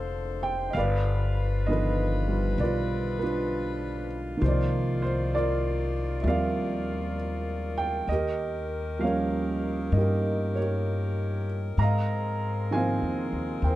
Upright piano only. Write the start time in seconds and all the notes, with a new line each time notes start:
Already playing: D3 F3 A3 C4 A4 D5 D#5 F5
0.43 G5
0.70 D#5 F5
0.77 B4 D5
1.66 D3 D#3 F3 B3 D#5
1.71 B4
2.28 G3 F4
2.60 F4 B4 D5
3.19 F4 B4
3.23 D4
4.37 D#3
4.41 F3 A#3 D#4 F4 C5
4.48 D5
5.02 C5
5.35 F4 A#4 D5
6.22 F3 E5
6.26 G3 C4 A#4 D5 F5
7.78 G5
8.09 G4 A#4 D#5
8.99 F3 G3 A#3 F5
9.04 C#4 A#4 C#5
9.92 A#3 D#4 D#5
9.97 G4 A#4
10.55 A#4 C#5
10.59 G4
11.79 D#5 F5 A#5
12.71 D#3 F3 A#3 C5 F5 G#5
12.75 C4
13.64 A#4 C5 G5